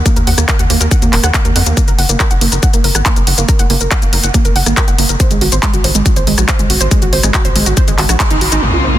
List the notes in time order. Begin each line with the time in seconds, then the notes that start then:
0.06 A#3, kick, closed hi-hat, shaker
0.16 D#2 A#4, closed hi-hat, shaker
0.27 D#2 F#5, open hi-hat
0.38 D#2 A#3, cross-stick, closed hi-hat, shaker
0.48 A#4, kick, clap, closed hi-hat, shaker
0.59 D#2 F#5, closed hi-hat, shaker
0.70 D#2 A#3, open hi-hat
0.81 D#2 A#4, closed hi-hat, shaker
0.91 F#5, kick, closed hi-hat, shaker
1.02 D#2 A#3, closed hi-hat, shaker
1.13 D#1 A#4, clap, open hi-hat
1.23 D#2 F#5, cross-stick, closed hi-hat, shaker
1.34 A#3, kick, clap, closed hi-hat, shaker
1.45 D#2 A#4, closed hi-hat, shaker
1.56 F2 F#5, open hi-hat
1.66 D#2 A#3, closed hi-hat, shaker
1.77 A#3, kick, closed hi-hat, shaker
1.88 F#1 A#4, closed hi-hat, shaker
1.99 F#1 F#5, open hi-hat
2.09 F#1 A#3, closed hi-hat, shaker
2.20 kick, clap, closed hi-hat, shaker
2.31 F#1 F#5, closed hi-hat, shaker
2.41 F#1 A#3, open hi-hat
2.52 F#1 A#4, closed hi-hat, shaker
2.63 F#5, kick, closed hi-hat, shaker
2.73 F#1 A#3, closed hi-hat, shaker
2.84 F#1 A#4, open hi-hat
2.95 G#1 F#5, cross-stick, closed hi-hat, shaker
3.06 A#3, kick, clap, closed hi-hat, shaker
3.16 F#1 A#4, closed hi-hat, shaker
3.27 F#1 F#5, open hi-hat
3.38 F#1 A#3, closed hi-hat, shaker
3.49 A#4, kick, closed hi-hat, shaker
3.59 F#1 F#5, closed hi-hat, shaker
3.70 F#1 A#3, open hi-hat
3.81 F#1 A#4, closed hi-hat, shaker
3.91 F#5, kick, clap, closed hi-hat, shaker
4.02 F#1 A#3, closed hi-hat, shaker
4.13 F#1 A#4, open hi-hat
4.24 F#1 F#5, closed hi-hat, shaker
4.34 A#3, kick, closed hi-hat, shaker
4.45 F#1 A#4, closed hi-hat, shaker
4.56 F#1 F#5, open hi-hat
4.66 G#1 A#3, cross-stick, closed hi-hat, shaker
4.77 A#4, kick, clap, closed hi-hat, shaker
4.88 F#1 F#5, closed hi-hat, shaker
4.99 F#1 A#3, open hi-hat
5.09 F#1 A#4, closed hi-hat, shaker
5.20 C5, kick, closed hi-hat, shaker
5.31 G#1 G#3, closed hi-hat, shaker
5.41 G#1 F#4, open hi-hat
5.52 G#1 C5, closed hi-hat, shaker
5.63 G#3, kick, clap, closed hi-hat, shaker
5.74 G#1 F#4, closed hi-hat, shaker
5.84 G#1 C5, open hi-hat
5.95 G#1 G#3, closed hi-hat, shaker
6.06 F#4, kick, closed hi-hat, shaker
6.16 G#1 C5, closed hi-hat, shaker
6.27 G#1 G#3, open hi-hat
6.38 A#1 F#4, cross-stick, closed hi-hat, shaker
6.48 C5, kick, clap, closed hi-hat, shaker
6.59 G#1 G#3, closed hi-hat, shaker
6.70 G#1 F#4, open hi-hat
6.81 G#1 C5, closed hi-hat, shaker
6.91 G#3, kick, closed hi-hat, shaker
7.02 G#1 F#4, closed hi-hat, shaker
7.13 G#1 C5, open hi-hat
7.23 G#1 G#3, cross-stick, closed hi-hat, shaker
7.34 F#4, kick, clap, closed hi-hat, shaker
7.45 G#1 C5, closed hi-hat, shaker
7.56 G#1 G#3, open hi-hat
7.66 G#1 F#4, closed hi-hat, shaker
7.77 C5, kick, closed hi-hat, shaker
7.88 G#1 G#3, closed hi-hat, shaker
7.98 G#1 F#4, clap, open hi-hat
8.09 A#1 F#4, cross-stick, closed hi-hat, shaker
8.20 G#3, kick, clap, closed hi-hat, shaker
8.31 G#1 D#4, closed hi-hat, shaker
8.41 G#1 F#4, open hi-hat
8.52 G#1 D#4, closed hi-hat, shaker
8.63 A#1 C#3 A#3 C4 F4, impact
8.74 F4
8.84 C5
8.95 A#3